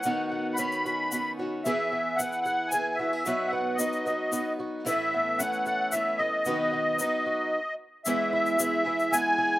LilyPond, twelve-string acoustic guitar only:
\new Staff \with { instrumentName = "Twelve-string acoustic guitar" } { \time 3/4 \key e \major \tempo 4 = 112 <dis fis'>8 b8 cis'8 fis'8 b8 fis'8 | <e gis'>8 b8 e'8 gis'8 b8 fis'16 gis'16 | <fis fis'>8 b8 dis'8 fis'8 b8 fis'8 | <e a'>8 b8 cis'8 a'8 b8 a'8 |
<b fis'>8 b8 dis'8 fis'8 r4 | e8 e'8 gis'8 e'8 b8 gis'8 | }